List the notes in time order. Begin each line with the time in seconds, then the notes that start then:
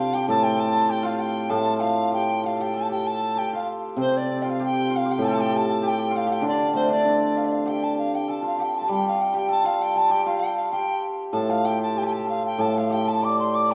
Already playing: C3 C4 D4 G4 A4 F5
0.00 F4
0.13 G4 G5
0.28 A2 A4 A5
0.43 G5
0.60 A5
0.86 G4 A4
0.90 G5
1.03 F4 F5
1.19 G5
1.49 A2 A4 A5
1.80 F4 F5
2.12 G4 G5
2.44 F4 F5
2.56 G4 A4
2.61 G5
2.74 A4 A5
2.89 G4 G5
3.07 A5
3.36 G4 G5
3.53 F4 F5
3.97 C3 C4 C5
4.17 D5
4.42 F4 G5
4.49 F5
4.59 G4
4.65 G5
4.90 F4
4.96 F5
5.05 G4
5.11 G5
5.18 A2 A4
5.24 G5 A5
5.29 A4
5.33 G4 A5
5.40 G5
5.56 A5
5.82 G4
5.87 G5
6.11 F4
6.16 F5
6.26 G4
6.32 G5
6.42 D3 D4
6.48 D5
6.73 A3 C4 C5
6.89 D4 D5
7.05 D4
7.37 F5
7.45 D5
7.52 F5
7.66 G4 G5
7.83 A5
7.98 F5
8.15 G5
8.28 A4 A5
8.42 F4
8.46 F5
8.59 G4 G5
8.77 A4 A5
8.88 G3 G4
8.92 G5
9.07 F5
9.21 G5
9.34 G4 G5
9.49 A4 A5
9.64 F4 F5
9.82 G5
9.96 A4 A5
10.10 G4 G5
10.26 F4 F5
10.39 G5
10.56 F5
10.72 G4 G5
11.32 A2 A4 A5
11.49 F4 F5
11.64 G4 G5
11.82 A5
11.95 G4 G5
12.02 G4 A5
12.06 G5
12.12 A5
12.19 G4
12.26 F4 F5
12.46 G5
12.58 A2 A4 A5
12.77 F5
12.90 G4 G5
13.05 A4 A5
13.22 D5 D6
13.39 C6
13.54 D6
13.71 G5